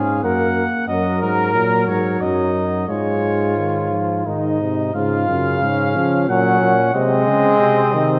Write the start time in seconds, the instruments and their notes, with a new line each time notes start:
Already playing: bass trombone G#2, trombone C#4, trumpet G#4, cornet F5
0.23 bass trombone F#2, trombone A#3, trumpet A#4, cornet F#5
0.88 bass trombone F#2, trombone F#3, trumpet A#4, cornet D#5
1.22 bass trombone G#2, cornet A#4
1.55 bass trombone A#2, trombone F#3
1.86 bass trombone G#2, cornet C#5
2.19 bass trombone F#2, trumpet D#4, cornet D#5
2.88 bass trombone G#2, trombone G#3, trumpet F4, cornet C#5
3.58 trombone D#3
3.91 trombone F3
4.26 bass trombone G#2, trombone D#3, trumpet D#4, cornet D#5
4.61 trombone C3
4.94 bass trombone G#2, trombone C#3, trumpet F4, cornet F5
5.28 bass trombone F#2, trombone C#3
5.62 bass trombone G#2, trumpet C#4
5.95 bass trombone C#3, trombone F3
6.29 bass trombone A#2, trombone F#3, trumpet C#4, cornet F#5
6.61 bass trombone A#2
6.94 bass trombone C3, trombone G#3, trumpet C4, cornet D#5
7.27 bass trombone C#3
7.59 bass trombone C3
7.93 bass trombone C3, trombone D#3